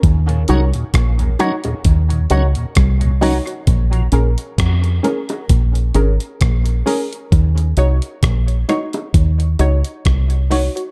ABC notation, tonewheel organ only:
X:1
M:4/4
L:1/16
Q:"Swing 16ths" 1/4=66
K:Ebdor
V:1 name="Tonewheel organ"
z2 [G,DE]2 z2 [G,DE]2 z2 [G,DE]2 z2 [G,DE]2 | z16 | z16 |]
V:2 name="Tonewheel organ" clef=bass
z [E,,B,,] z [E,,B,,] z [E,,B,,] z [E,,B,,] z [E,,B,,] z [E,,B,,] z [E,,B,,] z2 | z [B,,F,] z12 z2 | z16 |]